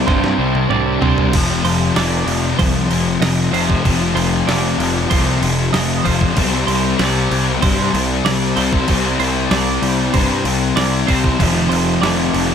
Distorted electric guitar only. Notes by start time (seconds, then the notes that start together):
0.07 C3 G3 C4
0.38 G3 C4
0.71 C3 G3 C4
1.34 F2 C3 F3
1.97 F2 C3 F3
2.59 F2 C3 F3
2.90 C3 F3
3.22 F2 C3 F3
3.84 F2 C3 F3
4.47 F2 C3 F3
5.10 F2 C3 F3
5.42 C3 F3
5.74 F2 C3 F3
6.37 C3 G3 C4
7.00 C3 G3 C4
7.62 C3 G3 C4
7.93 G3 C4
8.25 C3 G3 C4
8.88 C3 G3 C4
9.51 C3 G3 C4
10.14 C3 G3 C4
10.45 G3 C4
10.76 C3 G3 C4
11.38 F2 C3 F3
12.02 F2 C3 F3